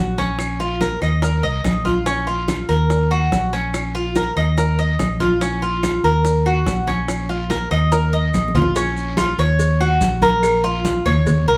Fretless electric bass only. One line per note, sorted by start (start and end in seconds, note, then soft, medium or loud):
0.00 0.96 A#1 medium
1.02 1.41 D#2 medium
1.44 1.63 C2 medium
1.64 2.63 A#1 medium
2.69 3.28 D#2 medium
3.32 4.30 A#1 medium
4.36 4.95 D#2 medium
4.99 5.98 A#1 medium
6.04 6.63 D#2 medium
6.67 7.65 A#1 loud
7.71 8.30 D#2 medium
8.34 9.33 A#1 medium
9.38 9.97 D#2 medium
10.01 11.00 A#1 loud
11.06 11.45 D#2 medium
11.47 11.57 C2 medium